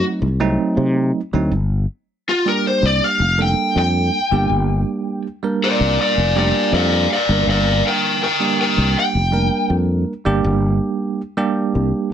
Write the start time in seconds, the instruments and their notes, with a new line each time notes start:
Already playing: tine electric piano F#3 A3 C4 D#4
0.22 fretless electric bass C2
0.40 tine electric piano F#3 A3 C4 D#4
0.77 fretless electric bass C3
1.33 fretless electric bass D2, tine electric piano F#3 A3 C4 D#4
1.51 fretless electric bass G1
2.29 lead electric guitar F4
2.45 tine electric piano G3 A#3 D4 G4, lead electric guitar A#4
2.67 lead electric guitar C5
2.83 fretless electric bass C2, lead electric guitar D5
3.04 lead electric guitar F5
3.20 fretless electric bass F1
3.38 tine electric piano G3 A#3 D4 A4, lead electric guitar G5
3.76 fretless electric bass F2, lead electric guitar G5
4.32 fretless electric bass G1, tine electric piano G3 A#3 D4 G4
4.50 fretless electric bass G1
5.43 tine electric piano G3 A#3 D4 A#4
5.64 lead electric guitar A#4 D5
5.80 fretless electric bass C2
6.01 lead electric guitar A#4 D5
6.17 fretless electric bass F1
6.36 tine electric piano G3 A#3 D4 G4, lead electric guitar A#4 D5
6.72 fretless electric bass F2, lead electric guitar D5 F5
7.13 lead electric guitar D5 F5
7.29 fretless electric bass G1, tine electric piano G3 A#3 D4 A#4
7.47 fretless electric bass G1, lead electric guitar D5 F5
7.87 lead electric guitar A#4 G5
8.23 lead electric guitar A#4 G5
8.40 tine electric piano G3 A#3 D4 G4
8.61 lead electric guitar A#4 G5
8.78 fretless electric bass C2
8.99 lead electric guitar G5
9.15 fretless electric bass F1
9.32 tine electric piano G3 A#3 D4 A#4
9.70 fretless electric bass F2
10.25 fretless electric bass G1, tine electric piano G3 A#3 D4 G4
10.44 fretless electric bass G1
11.37 tine electric piano G3 A#3 D4 G4
11.75 fretless electric bass C2